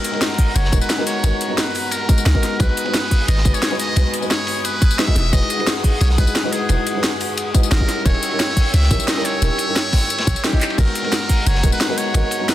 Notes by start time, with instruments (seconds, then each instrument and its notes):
Already playing: felt piano G#3 B3 D#4 F#4 A#4, muted trumpet A#4, analog synth pad F#5 A#5
0.04 closed hi-hat, ride, tambourine
0.11 felt piano G#3 B3 D#4 F#4, ride
0.16 felt piano A#4
0.21 snare, closed hi-hat, ride, tambourine
0.30 snare
0.38 kick, closed hi-hat, open hi-hat
0.55 808-style bass F#1, muted trumpet C#5, closed hi-hat, ride, tambourine
0.65 snare
0.72 808-style bass D#1, felt piano G#3 B3 D#4 F#4 A#4, kick, closed hi-hat, ride, tambourine
0.81 muted trumpet B4, ride, tambourine
0.90 snare, closed hi-hat, ride, tambourine
0.98 felt piano G#3 B3 D#4 F#4 A#4, snare
1.06 muted trumpet C#5, snare, closed hi-hat, ride, tambourine
1.23 808-style bass G#1, felt piano G#3 B3 D#4 F#4 A#4, closed hi-hat, ride, tambourine
1.41 closed hi-hat, ride, tambourine
1.48 felt piano G#3 B3 D#4 F#4
1.52 felt piano A#5
1.57 muted trumpet B4, snare, closed hi-hat, ride, tambourine
1.75 open hi-hat, ride
1.91 muted trumpet A#4, closed hi-hat, ride, tambourine
2.08 felt piano G#3 B3 D#4 F#4 A#4, kick, closed hi-hat, ride, tambourine
2.18 ride, tambourine
2.25 808-style bass C#2, muted trumpet A#4, snare, closed hi-hat, ride, tambourine
2.34 felt piano G#3 B3 D#4 F#4 A#4, kick, snare
2.43 snare, closed hi-hat, ride, tambourine
2.59 808-style bass B1, felt piano G#3 B3 D#4 F#4 B4, muted trumpet B4, analog synth pad B4 G#5 D#6, kick, closed hi-hat, ride, tambourine
2.69 ride
2.77 closed hi-hat, ride, tambourine
2.84 felt piano G#3 B3 D#4 F#4, ride
2.88 felt piano B4
2.94 snare, closed hi-hat, ride, tambourine
3.02 snare
3.11 kick, closed hi-hat, open hi-hat
3.28 808-style bass G#1, muted trumpet D#5, closed hi-hat, ride, tambourine
3.37 snare
3.44 808-style bass F#1, felt piano G#3 B3 D#4 F#4 B4, kick, closed hi-hat, ride, tambourine
3.54 muted trumpet C#5, ride, tambourine
3.62 snare, closed hi-hat, ride, tambourine
3.70 felt piano G#3 B3 D#4 F#4 B4, snare
3.79 muted trumpet D#5, snare, closed hi-hat, ride, tambourine
3.95 808-style bass B1, felt piano G#3 B3 D#4 F#4 B4, closed hi-hat, ride, tambourine
4.13 closed hi-hat, ride, tambourine
4.20 felt piano G#3 B3 D#4 F#4, tambourine
4.24 felt piano B4
4.31 muted trumpet C#5, snare, closed hi-hat, ride, tambourine
4.47 open hi-hat, ride
4.65 muted trumpet B4, closed hi-hat, ride, tambourine
4.82 kick, closed hi-hat, ride, tambourine
4.91 ride, tambourine
4.98 felt piano G#3 B3 D#4 F#4 B4, muted trumpet E5, snare, closed hi-hat, ride, tambourine
5.07 felt piano G#3 D#4 E4 F#4 D#5, kick, snare
5.16 808-style bass E1, analog synth pad G#4 F#5, snare, closed hi-hat, ride, tambourine
5.32 808-style bass E1, felt piano G#3 D#4 E4 F#4 B4, muted trumpet D#5, kick, closed hi-hat, ride, tambourine
5.42 ride
5.50 closed hi-hat, ride, tambourine
5.57 felt piano G#3 D#4 E4 F#4, ride
5.61 felt piano B4
5.67 snare, closed hi-hat, ride, tambourine
5.75 snare
5.84 kick, closed hi-hat, open hi-hat
6.00 808-style bass B1, muted trumpet C#5, closed hi-hat, ride, tambourine
6.10 snare
6.17 808-style bass B1, felt piano G#3 D#4 E4 F#4 B4, muted trumpet B4, kick, closed hi-hat, ride, tambourine
6.27 ride, tambourine
6.35 snare, closed hi-hat, ride, tambourine
6.43 felt piano G#3 D#4 E4 F#4 B4, snare
6.52 muted trumpet G#4, snare, closed hi-hat, ride, tambourine
6.68 808-style bass E1, felt piano G#3 D#4 E4 F#4 B4, closed hi-hat, ride, tambourine
6.87 closed hi-hat, ride, tambourine
6.93 felt piano G#3 D#4 E4 F#4
6.97 felt piano B4
7.03 snare, closed hi-hat, ride, tambourine
7.21 open hi-hat, ride
7.37 closed hi-hat, ride, tambourine
7.53 felt piano G#3 D#4 E4 F#4 B4, kick, closed hi-hat, ride, tambourine
7.63 ride, tambourine
7.71 808-style bass G#1, muted trumpet A#4, snare, closed hi-hat, ride, tambourine
7.79 felt piano G3 C#4 D#4 E4 A#4, kick, snare
7.88 analog synth pad C#5 G5 E6, snare, closed hi-hat, ride, tambourine
8.05 808-style bass D#1, felt piano G3 C#4 D#4 E4 A#4, muted trumpet C#5, kick, closed hi-hat, ride, tambourine
8.14 ride
8.23 closed hi-hat, ride, tambourine
8.29 felt piano G3 C#4 D#4 E4, ride
8.34 felt piano A#4
8.39 snare, closed hi-hat, ride, tambourine
8.49 snare
8.57 kick, closed hi-hat, open hi-hat
8.74 808-style bass C#2, muted trumpet E5, closed hi-hat, ride, tambourine
8.83 snare
8.90 808-style bass A#1, felt piano G3 C#4 D#4 E4 A#4, kick, closed hi-hat, ride, tambourine
9.00 ride, tambourine
9.07 muted trumpet D#5, snare, closed hi-hat, ride, tambourine
9.16 felt piano G3 C#4 D#4 E4 A#4, snare
9.25 muted trumpet C#5, snare, closed hi-hat, ride, tambourine
9.41 808-style bass D#1, felt piano G3 C#4 D#4 E4 A#4, closed hi-hat, ride, tambourine
9.58 closed hi-hat, ride, tambourine
9.65 felt piano G3 C#4 D#4 E4
9.70 felt piano A#4
9.76 snare, closed hi-hat, ride, tambourine
9.92 kick, snare, open hi-hat, ride, tambourine
10.02 snare
10.10 closed hi-hat, ride, tambourine
10.18 snare, ride
10.27 808-style bass A#1, kick, snare, closed hi-hat, tambourine
10.36 ride, tambourine
10.43 felt piano G3 C#4 D#4 E4 A#4, muted trumpet G4, snare, closed hi-hat, ride, tambourine
10.52 felt piano G3 C#4 D#4 E4 D#5, kick, snare
10.61 clap, closed hi-hat, ride, tambourine
10.70 ride
10.77 808-style bass G#1, felt piano G#3 B3 D#4 F#4 A#4, muted trumpet A#4, analog synth pad F#5 A#5, kick, closed hi-hat, crash, ride, tambourine
10.87 ride
10.95 closed hi-hat, ride, tambourine
11.02 felt piano G#3 B3 D#4 F#4, ride
11.06 felt piano A#4
11.12 snare, closed hi-hat, ride, tambourine
11.21 snare
11.29 kick, closed hi-hat, open hi-hat
11.46 808-style bass F#1, muted trumpet C#5, closed hi-hat, ride, tambourine
11.55 snare
11.63 808-style bass D#1, felt piano G#3 B3 D#4 F#4 A#4, kick, closed hi-hat, ride, tambourine
11.72 muted trumpet B4, ride, tambourine
11.80 snare, closed hi-hat, ride, tambourine
11.88 felt piano G#3 B3 D#4 F#4 A#4, snare
11.97 muted trumpet C#5, snare, closed hi-hat, ride, tambourine
12.14 808-style bass G#1, felt piano G#3 B3 D#4 F#4 A#4, closed hi-hat, ride, tambourine
12.31 closed hi-hat, ride, tambourine
12.38 felt piano G#3 B3 D#4 F#4
12.43 felt piano A#5
12.48 muted trumpet B4, snare, closed hi-hat, ride, tambourine